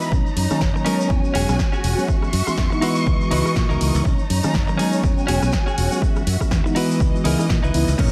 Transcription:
Already playing: string section E3 D#5 B5, clean electric guitar D#4 E4 B4
0.01 shaker
0.12 fingered electric bass B1, tine electric piano D#3 F#3 A#3 C#4, string section D#4 C#5 A#5, kick, shaker
0.26 shaker
0.36 fingered electric bass F#2, open hi-hat
0.50 tine electric piano D#3 F#3 A#3 C#4, muted fingered electric bass stroke, cross-stick, shaker
0.61 fingered electric bass F#1, kick, snare, shaker
0.74 tine electric piano D#3 F#3 A#3 C#4, muted clean electric guitar stroke, shaker
0.85 tine electric piano F#3 G#3 B3 C#4, clean electric guitar C#4 D#4 A#4, open hi-hat
1.00 shaker
1.10 fingered electric bass E2, string section F#4 G#5, kick
1.24 shaker
1.34 fingered electric bass E1, clean electric guitar C#4 F#4 G#4, open hi-hat
1.48 fingered electric bass B1, tine electric piano F#3 G#3 B3 C#4, cross-stick, shaker
1.59 kick, snare, shaker
1.72 clean electric guitar C#4 F#4 G#4, shaker
1.84 fingered electric bass E1, open hi-hat
1.98 tine electric piano F#3 G#3 B3 C#4, shaker
2.08 tine electric piano E3 G#3 B3 C#4, string section E5 C#6, kick, shaker
2.22 cross-stick, shaker
2.33 fingered electric bass F#2, open hi-hat
2.47 tine electric piano E3 G#3 B3 C#4, muted fingered electric bass stroke, cross-stick, shaker
2.57 fingered electric bass E2, kick, snare, shaker
2.70 tine electric piano E3 G#3 B3 D#4, muted clean electric guitar stroke, shaker
2.81 tine electric piano E3 G#3 B3 F#4, string section E3 D#5, clean electric guitar D#4 E4 B4, open hi-hat
2.95 shaker
3.07 fingered electric bass C#2, kick, shaker
3.21 shaker
3.31 fingered electric bass C#2, clean electric guitar D#4 E4 B4, open hi-hat
3.46 cross-stick, shaker
3.56 fingered electric bass A#2, kick, snare, shaker
3.69 fingered electric bass C#2, clean electric guitar D#4 E4 A#4, shaker
3.81 fingered electric bass C#2, open hi-hat
3.95 fingered electric bass C#2, shaker
4.05 fingered electric bass B1, tine electric piano D#3 F#3 A#3 C#4, string section D#4 C#5 A#5, kick, shaker
4.19 shaker
4.30 fingered electric bass F#2, open hi-hat
4.43 tine electric piano D#3 F#3 A#3 C#4, muted fingered electric bass stroke, cross-stick, shaker
4.54 fingered electric bass F#1, kick, snare, shaker
4.67 tine electric piano D#3 F#3 A#3 C#4, muted clean electric guitar stroke, shaker
4.77 tine electric piano F#3 G#3 B3 C#4, clean electric guitar C#4 D#4 G#4, open hi-hat
4.93 shaker
5.04 fingered electric bass E2, string section F#4 G#5, kick, shaker
5.18 shaker
5.27 fingered electric bass E1, clean electric guitar C#4 F#4 G#4, open hi-hat
5.42 fingered electric bass B1, tine electric piano F#3 G#3 B3 C#4, cross-stick, shaker
5.52 kick, snare, shaker
5.66 clean electric guitar C#4 F#4 G#4, shaker
5.78 fingered electric bass E1, open hi-hat
5.91 tine electric piano F#3 G#3 B3 C#4, shaker
6.01 tine electric piano E3 G#3 B3 C#4, string section E5, kick, shaker
6.16 cross-stick, shaker
6.27 fingered electric bass F#2, open hi-hat
6.40 tine electric piano E3 G#3 B3 C#4, muted fingered electric bass stroke, kick, cross-stick, shaker
6.51 fingered electric bass E2, kick, snare, shaker
6.64 tine electric piano E3 G#3 B3 D#4, muted clean electric guitar stroke, shaker
6.75 tine electric piano E3 G#3 B3 F#4, string section E3 D#5, clean electric guitar D#4 E4 B4, open hi-hat
6.91 shaker
7.00 fingered electric bass C#2, kick, shaker
7.15 shaker
7.24 fingered electric bass C#2, tine electric piano E3 G#3 B3 C#4, clean electric guitar D#4 E4 A#4, open hi-hat
7.39 cross-stick, shaker
7.49 fingered electric bass A#2, kick, snare, shaker
7.63 fingered electric bass C#2, clean electric guitar D#4 E4 B4, shaker
7.74 fingered electric bass C#2, tine electric piano E3 G#3 B3 E4, open hi-hat
7.88 fingered electric bass C#2, shaker
7.98 fingered electric bass B1, tine electric piano D#3 F#3 A#3 C#4, clean electric guitar D#4 A#4 B4 C#5, string section D#4 C#5 A#5, kick, crash, impact

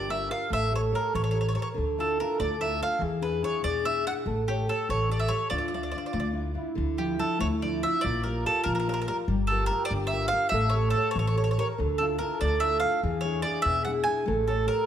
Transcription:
Already playing: upright bass G1, nylon-string guitar D3, soft synth lead G4
0.09 nylon-string guitar F4 G4 A#4, mandolin E5
0.30 nylon-string guitar F4 G4 A#4, mandolin F5
0.50 upright bass A1, nylon-string guitar A3, soft synth lead A4, mandolin E5
0.71 nylon-string guitar G4 A4 C#5
0.75 mandolin C#5
0.91 nylon-string guitar G4 A4 C#5, mandolin A#4
1.14 upright bass A1, nylon-string guitar E3, mandolin C#5
1.24 mandolin C#5
1.31 nylon-string guitar G4 A4 C#5, mandolin C#5
1.41 mandolin C#5
1.49 mandolin C#5
1.55 nylon-string guitar G4 A4 C#5, soft synth lead A#4, mandolin C#5
1.62 mandolin C#5
1.74 upright bass D2, nylon-string guitar D3, soft synth lead A4
1.98 nylon-string guitar D4 E4 F4, mandolin A4
2.20 nylon-string guitar D4 E4 F4, mandolin A#4
2.39 upright bass D2, nylon-string guitar A3, mandolin D5
2.60 nylon-string guitar D4 E4 F4, mandolin E5
2.81 nylon-string guitar D4 E4 F4, mandolin F5
2.99 upright bass E2, nylon-string guitar E3, soft synth lead G#4
3.21 nylon-string guitar D4 E4 G#4, mandolin B4
3.42 nylon-string guitar D4 E4 G#4, mandolin C#5
3.62 upright bass E2, nylon-string guitar B2, mandolin D5
3.85 nylon-string guitar D4 E4 G#4, mandolin E5
4.07 nylon-string guitar D4 E4 G#4, mandolin F#5
4.26 upright bass A1, nylon-string guitar A3, soft synth lead A4
4.48 mandolin G4, nylon-string guitar G4 A4 C#5
4.68 nylon-string guitar G4 A4 C#5, mandolin A4
4.89 upright bass A1, nylon-string guitar E3, mandolin C#5
5.09 nylon-string guitar G4 A4 C#5, mandolin D5
5.19 mandolin E5
5.28 nylon-string guitar G4 A4 C#5, mandolin C#5
5.50 upright bass D2, nylon-string guitar D3, soft synth lead F4, mandolin D5
5.58 mandolin D5
5.68 mandolin D5
5.73 nylon-string guitar D4 F4 E5, mandolin D5
5.83 mandolin D5
5.91 mandolin D5
5.96 nylon-string guitar D4 F4 E5, mandolin D5
6.06 mandolin D5
6.13 upright bass D2, nylon-string guitar A3, mandolin D5
6.20 mandolin D5
6.33 nylon-string guitar D4 E4 F4
6.54 nylon-string guitar D4 E4 F4, soft synth lead E4
6.75 upright bass D2, nylon-string guitar D3, soft synth lead E4
6.97 nylon-string guitar F3 D4 E4, mandolin G4
7.19 nylon-string guitar F3 D4 E4, mandolin A4
7.39 upright bass D2, nylon-string guitar A3, mandolin C#5
7.62 nylon-string guitar F3 D4 E4, mandolin D5
7.83 nylon-string guitar D4 E4 F4, mandolin E5
8.01 upright bass A#1, nylon-string guitar A#3, soft synth lead F4, mandolin D5
8.23 nylon-string guitar G4 A#4 D5, mandolin A#4
8.46 nylon-string guitar G4 A#4 D5, mandolin A4
8.64 upright bass A#1, nylon-string guitar F3, mandolin A#4
8.75 mandolin A#4
8.80 mandolin A#4
8.88 nylon-string guitar G4 A#4 D5, mandolin A#4
8.94 mandolin A#4
9.02 mandolin A#4
9.08 nylon-string guitar G4 A#4 D5, mandolin A#4
9.28 upright bass G1, nylon-string guitar G3, soft synth lead G4
9.47 nylon-string guitar F4 G4, mandolin A4
9.52 nylon-string guitar A#4
9.66 mandolin A#4
9.71 nylon-string guitar F4 G4 A#4
9.85 mandolin D5
9.91 upright bass G1, nylon-string guitar D3
10.07 mandolin E5
10.13 nylon-string guitar F4 G4 A#4
10.28 mandolin F5
10.33 nylon-string guitar F4 G4 A#4
10.49 upright bass A1, mandolin E5
10.54 nylon-string guitar A3, soft synth lead A4
10.70 mandolin C#5
10.74 nylon-string guitar G4 A4 C#5
10.90 mandolin A4
10.95 nylon-string guitar G4 A4 C#5
11.11 nylon-string guitar E3, mandolin C#5
11.16 upright bass A1, mandolin C#5
11.27 mandolin C#5
11.37 nylon-string guitar G4 A4 C#5, mandolin C#5
11.44 mandolin C#5
11.51 mandolin C#5
11.58 nylon-string guitar G4 A4 C#5, soft synth lead A#4, mandolin C#5
11.78 upright bass D2, nylon-string guitar D3, soft synth lead A4
11.98 nylon-string guitar D4 E4 F4, mandolin A4
12.19 nylon-string guitar D4 E4 F4, mandolin A#4
12.41 upright bass D2, nylon-string guitar A3, mandolin D5
12.60 nylon-string guitar D4 E4 F4, mandolin E5
12.80 nylon-string guitar D4, mandolin F5
12.84 nylon-string guitar E4 F4
13.03 upright bass E2, nylon-string guitar E3, soft synth lead G#4
13.21 nylon-string guitar E4, mandolin C#5
13.25 nylon-string guitar D4 G#4
13.42 nylon-string guitar D4 E4 G#4, mandolin D5
13.62 upright bass E2, nylon-string guitar B2, mandolin E5
13.85 nylon-string guitar D4 E4 G#4, mandolin F#5
14.04 nylon-string guitar D4 E4 G#4, mandolin G#5
14.26 upright bass A1, nylon-string guitar A3, soft synth lead A4
14.47 nylon-string guitar G4 A4 C#5, mandolin A4
14.66 nylon-string guitar G4 A4 C#5, mandolin A#4

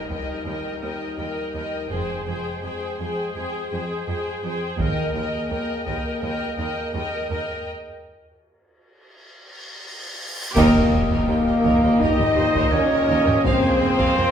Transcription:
Already playing: french horn section G3 D#4, impact
0.10 cello section D#2, viola section A#4, violin section D#5 G5, taiko
0.46 cello section D#2, viola section A#4, violin section D#5 G5
0.81 cello section D#2, viola section A#4, violin section G5
0.86 violin section D#5
1.17 cello section D#2, viola section A#4, violin section G5
1.21 violin section D#5
1.53 cello section D#2, viola section A#4, violin section G5
1.57 violin section D#5
1.89 double bass section F1, cello section F2, french horn section G#3 G#4, viola section G#4, violin section C5 G5
2.25 cello section F2, viola section G#4, violin section C5 G5
2.63 cello section F2, viola section G#4, violin section C5 G5
2.98 cello section F2, viola section G#4, violin section G5
3.04 violin section C5
3.34 cello section F2, viola section G#4, violin section C5 G5
3.70 cello section F2, viola section G#4, violin section C5 G5
4.06 cello section F2, viola section G#4, violin section C5 G5
4.42 cello section F2, viola section G#4, violin section G5
4.46 violin section C5
4.78 cello section D#2, double bass section D#2, french horn section A#3, viola section A#4, violin section D#5 G5, taiko
5.14 cello section D#2, viola section A#4, violin section D#5 G5
5.51 cello section D#2, viola section A#4, violin section D#5 G5
5.86 cello section D#2, viola section A#4, violin section D#5 G5, taiko
6.22 cello section D#2, viola section A#4, violin section D#5 G5
6.58 cello section D#2, viola section A#4, violin section D#5 G5
6.94 cello section D#2, viola section A#4, violin section D#5 G5
7.30 cello section D#2, viola section A#4, violin section D#5 G5
7.68 cymbal swell
10.55 double bass section D#2, cello section D#2, trombone section A#2 A#3, french horn section A#3, string section D#4 G4 A#4 G5, flute A#4, violin section A#4, trumpet section D#5, concert bass drum, taiko, crash, impact
10.74 cello section D#2, violin section G5
10.92 cello section D#2, double bass section D#2, violin section D#5
11.09 cello section D#2, violin section A#4, taiko
11.28 cello section D#2, double bass section D#2, violin section G5
11.46 cello section D#2, violin section D#5
11.64 cello section D#2, double bass section D#2, violin section A#4, taiko
11.83 cello section D#2, violin section G5
12.00 cello section D#2, double bass section D#2, french horn section D#4, viola section G4, violin section A#4 D#5, flute D#5, taiko
12.19 cello section D#2, violin section G5, taiko low-mid
12.37 cello section D#2, double bass section D#2, viola section C5, violin section D#5
12.54 cello section D#2, violin section A#4, taiko
12.71 cello section D#2, double bass section D#2, french horn section C#4, viola section A#4, flute C#5, violin section C#5 G5
12.90 cello section D#2, violin section D#5
13.09 double bass section D#2, cello section D#2, violin section A#4
13.26 cello section D#2, violin section G5, taiko low-mid
13.44 double bass section F1, cello section F2, trombone section G#2, string section G#3 C4 F4, french horn section C4, viola section G#4, flute C5, trumpet section C5, violin section C5 F5, taiko
13.63 cello section F2, violin section G#5
13.80 double bass section F1, cello section F2, violin section G5
13.98 cello section F2, violin section F5, taiko
14.17 double bass section F1, cello section F2, viola section G4, violin section G#5

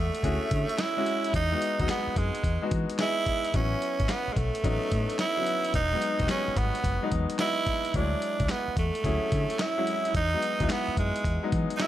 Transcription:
Already playing: grand piano G#3 E4 F#4 C#5, tenor saxophone A3
0.15 closed hi-hat
0.23 fingered electric bass D2, grand piano C#4 E4 F#4 G#4, kick, closed hi-hat
0.51 fingered electric bass D3, kick, closed hi-hat
0.69 closed hi-hat
0.78 tenor saxophone E4, snare, clap, closed hi-hat
0.97 grand piano G#3 C#4 E4 F#4
1.06 closed hi-hat
1.24 closed hi-hat
1.34 fingered electric bass E2, tenor saxophone D#4, kick, closed hi-hat
1.52 grand piano G#3 B3 D#4 F#4
1.62 closed hi-hat
1.79 fingered electric bass D#2, grand piano F#3 B3 D#4 F#4, kick, closed hi-hat
1.86 grand piano G#3, snare, clap, closed hi-hat
1.90 tenor saxophone B3
2.07 muted fingered electric bass stroke
2.16 fingered electric bass F#2, tenor saxophone G#3, kick, closed hi-hat
2.35 closed hi-hat
2.44 fingered electric bass E2, kick, closed hi-hat
2.62 grand piano G#3 B3 D#4 F#4
2.71 fingered electric bass E3, kick, closed hi-hat
2.90 closed hi-hat
2.99 grand piano G#3 B3 G#4 D#5, tenor saxophone E4, snare, clap, closed hi-hat
3.26 kick, closed hi-hat
3.45 closed hi-hat
3.54 fingered electric bass A1, grand piano F#3 B3 C#4 E4, tenor saxophone C#4, kick, closed hi-hat
3.82 closed hi-hat
4.00 fingered electric bass G#1, kick, closed hi-hat
4.09 tenor saxophone B3, snare, clap, closed hi-hat
4.28 muted fingered electric bass stroke
4.33 fingered electric bass B1, tenor saxophone G#3, kick, closed hi-hat
4.38 tenor saxophone A3
4.55 closed hi-hat
4.64 fingered electric bass A1, grand piano F#3 B3 C#4 D#4, kick, closed hi-hat
4.92 fingered electric bass A2, kick, closed hi-hat
5.10 closed hi-hat
5.19 tenor saxophone E4, snare, clap, closed hi-hat
5.37 grand piano F#3 B3 C#4 F#4
5.46 closed hi-hat
5.64 closed hi-hat
5.74 fingered electric bass E1, tenor saxophone D#4, kick, closed hi-hat
5.92 grand piano F#3 G#3 B3 D#4
6.02 closed hi-hat
6.20 fingered electric bass E1, grand piano F#3 G3 B3 F#4, kick, closed hi-hat
6.27 grand piano G#3, tenor saxophone C#4, snare, clap, closed hi-hat
6.48 muted fingered electric bass stroke
6.56 fingered electric bass G#1, tenor saxophone B3, kick, closed hi-hat
6.75 closed hi-hat
6.84 fingered electric bass F#1, kick, closed hi-hat
7.02 grand piano F#3 G#3 B3 D#4
7.12 fingered electric bass E2, kick, closed hi-hat
7.30 closed hi-hat
7.39 grand piano F#3 G#3 B3 D#5, tenor saxophone E4, snare, clap, closed hi-hat
7.67 kick, closed hi-hat
7.85 closed hi-hat
7.94 fingered electric bass D2, grand piano F#3 G#3 E4 C#5, tenor saxophone D4, kick, closed hi-hat
8.22 closed hi-hat
8.40 fingered electric bass C#2, kick, closed hi-hat
8.49 tenor saxophone B3, snare, clap, closed hi-hat
8.68 muted fingered electric bass stroke
8.77 fingered electric bass E2, tenor saxophone A3, kick, closed hi-hat
8.95 closed hi-hat
9.04 fingered electric bass D2, grand piano F#3 C#4 E4 G#4, kick, closed hi-hat
9.32 fingered electric bass D3, kick, closed hi-hat
9.50 closed hi-hat
9.59 tenor saxophone E4, snare, clap, closed hi-hat
9.78 grand piano F#3 G#3 C#4 E4
9.87 closed hi-hat
10.05 closed hi-hat
10.15 fingered electric bass E2, tenor saxophone D#4, kick, closed hi-hat
10.33 grand piano F#3 G#3 B3 D#4
10.42 closed hi-hat
10.60 fingered electric bass D#2, grand piano F#3 G#3 B3 E4, kick, closed hi-hat
10.69 tenor saxophone B3, snare, clap, closed hi-hat
10.88 muted fingered electric bass stroke
10.97 fingered electric bass F#2, tenor saxophone G#3, kick, closed hi-hat
11.16 closed hi-hat
11.24 fingered electric bass E2, kick, closed hi-hat
11.43 grand piano F#3 G#3 B3 D#4
11.52 fingered electric bass E3, kick, closed hi-hat
11.70 closed hi-hat
11.77 grand piano F#3 G#3 B3, tenor saxophone D#4, snare, clap, closed hi-hat
11.81 tenor saxophone E4, grand piano D#5

